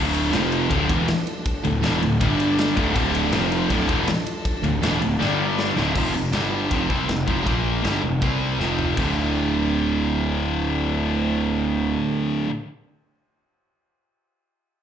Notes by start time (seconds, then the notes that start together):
Already playing: D1 D2 A2 D3 F3 D4 A4
0.14 ride
0.32 F1 F2 C3 F3 C4 C5, snare, ride
0.52 ride
0.70 D1 D2 A2 D3 D4 A4, kick, ride
0.89 E1 E2 B2 E3, kick, ride
1.08 snare, ride
1.27 ride
1.46 kick, ride
1.64 D1 D2 A2, ride
1.83 E1 E2 B2 E3, snare, ride
2.02 D1 D2 A2, ride
2.20 G1 G2 D3 G3 D5, kick, ride
2.40 ride
2.58 snare, ride
2.75 D1 D2 A2 D3 F3 A4, kick, ride
2.95 D1 D2 A2 D3, kick, ride
3.15 ride
3.32 F1 F2 C3 F3 C4 C5, snare, ride
3.52 ride
3.70 D1 D2 A2 D3 D4 A4, kick, ride
3.89 E1 E2 B2 E3, kick, ride
4.08 snare, ride
4.26 ride
4.45 kick, ride
4.64 D1 D2 A2, ride
4.83 E1 E2 B2 E3, snare, ride
5.01 D1 D2 A2, ride
5.19 G1 G2 D3 G3 D5, snare
5.59 snare
5.77 D1 D2 A2 D3 A3 F4, snare
5.95 F1 F2 C3 F3, kick, crash
6.14 F1 F2 C3
6.32 G1 G2 D3 G3, snare, ride bell
6.70 F1 F2 C3 F3, kick, ride bell
6.90 C2 C3 G3 C4, kick
7.08 F1 F2 C3, snare, ride bell
7.27 F1 F2 C3 F3, kick
7.45 A#1 A#2 F3 A#3, kick, ride bell
7.83 G1 G2 D3 G3, snare, ride bell
8.03 F1 F2 C3
8.22 C2 C3 G3 C4, kick, ride bell
8.59 F1 F2 C3 F3, snare
8.79 floor tom
8.96 D1 D2 A2 D3, kick, crash